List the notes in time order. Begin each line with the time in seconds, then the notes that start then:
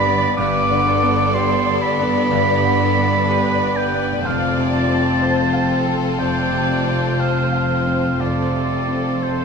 Already playing: G1 G2 D3 G3 B3 D4 G4 D5 B5
0.06 B3
0.37 G1 G2 G3 B3 D4 B4 D5 D6
0.71 D3
0.86 B3 A4
1.03 B3
1.34 G4 C6
1.67 D5
1.81 B4 B5
1.99 B3
2.31 G2 D3 G4
2.65 D3
2.79 B3 A4
2.97 B3
3.29 G4 B4
3.62 D5
3.76 B4 G5
3.94 B3
4.25 F1 F2 F3 C4 F4 A4 D5 F5
4.58 C3
4.73 C4 A5
4.89 C4
5.21 C5
5.53 F5
5.70 A4 A5
5.86 C4
6.19 F2 C3 D5 G5
6.52 C3
6.70 C4
6.84 C4
7.18 C5 F5
7.52 F5
7.86 C4
8.18 F1 F2 F3 C4 F4 A4 D5
8.54 C3
8.71 C4
8.88 C4
9.22 C5